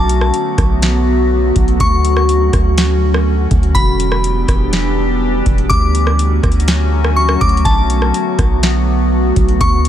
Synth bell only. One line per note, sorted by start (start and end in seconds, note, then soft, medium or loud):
0.00 0.31 A5 medium
1.81 2.26 C#6 loud
3.75 4.21 B5 loud
5.70 6.16 D6 loud
7.16 7.40 C#6 medium
7.41 7.64 D6 medium
7.65 8.11 A5 medium
9.61 9.89 C#6 medium